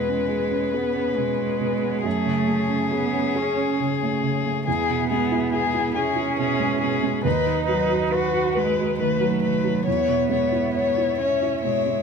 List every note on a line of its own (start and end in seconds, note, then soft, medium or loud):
0.00 2.01 E2 soft
0.00 1.17 B2 soft
0.00 0.75 G#3 medium
0.00 0.22 B3 soft
0.00 4.67 C#4 soft
0.00 4.67 G#4 soft
0.00 2.02 B4 soft
0.00 2.04 B4 soft
0.08 0.43 C#4 soft
0.29 0.64 G#4 soft
0.51 0.86 C#4 soft
0.73 1.18 B3 medium
0.73 1.09 G#4 soft
0.95 1.31 C#4 soft
1.17 1.53 B2 soft
1.17 2.06 G#3 medium
1.39 1.74 B3 soft
1.60 1.96 B2 soft
1.82 2.05 B3 soft
2.03 4.61 F#2 soft
2.03 2.92 A3 medium
2.03 4.62 G#4 soft
2.03 4.66 C#5 soft
2.25 2.61 C#3 soft
2.48 2.84 A3 soft
2.69 3.05 C#4 soft
2.92 3.38 B3 medium
2.92 3.27 G#4 soft
3.13 3.48 C#4 soft
3.36 3.79 C#4 medium
3.36 3.70 G#4 soft
3.57 3.92 C#4 soft
3.80 4.14 C#3 soft
4.03 4.37 A3 soft
4.23 4.58 C#3 soft
4.46 4.67 A3 soft
4.66 7.21 E2 soft
4.66 7.20 G#3 soft
4.66 5.97 B3 medium
4.66 7.25 E4 soft
4.66 5.09 G#4 medium
4.66 9.87 B4 soft
4.90 5.24 B2 soft
5.10 5.45 G#3 soft
5.10 5.52 G#4 soft
5.32 5.66 E4 soft
5.53 5.94 G#4 soft
5.53 5.88 G#4 soft
5.74 6.08 E4 soft
5.94 7.24 C#4 medium
5.94 6.29 G#4 soft
5.94 6.37 G#4 soft
6.16 6.51 E4 soft
6.39 6.73 B2 soft
6.39 6.80 G#4 soft
6.60 6.94 G#3 soft
6.81 7.17 B2 soft
6.81 7.24 G#4 soft
7.03 7.25 G#3 soft
7.24 9.83 D#2 soft
7.24 9.86 F#3 soft
7.24 9.87 D#4 soft
7.24 8.14 D#4 medium
7.24 7.66 B4 soft
7.46 7.81 D#3 soft
7.66 8.03 F#3 soft
7.66 8.09 B4 soft
7.90 8.25 F#4 soft
8.10 8.58 F#4 medium
8.10 8.54 B4 soft
8.10 8.47 B4 soft
8.33 8.69 F#4 soft
8.55 9.03 G#3 medium
8.55 8.91 B4 soft
8.55 8.98 B4 soft
8.77 9.12 F#4 soft
8.99 9.34 D#3 soft
8.99 9.86 A3 medium
8.99 9.42 B4 soft
9.20 9.55 F#3 soft
9.42 9.78 D#3 soft
9.42 9.85 B4 soft
9.64 9.86 F#3 soft
9.86 12.02 E2 soft
9.86 12.02 G#3 soft
9.86 11.20 B3 medium
9.86 10.29 C#5 soft
9.86 12.02 C#5 soft
9.86 12.02 E5 soft
10.08 10.44 B2 soft
10.30 10.66 G#3 soft
10.30 10.74 C#5 soft
10.52 10.88 E4 soft
10.74 11.18 C#5 soft
10.74 11.10 C#5 soft
10.97 11.33 E4 soft
11.19 11.66 C#4 medium
11.19 11.61 C#5 soft
11.19 11.55 C#5 soft
11.42 11.78 E4 soft
11.61 12.00 B2 soft
11.61 12.02 G#3 medium
11.61 12.02 C#5 soft
11.86 12.02 G#3 soft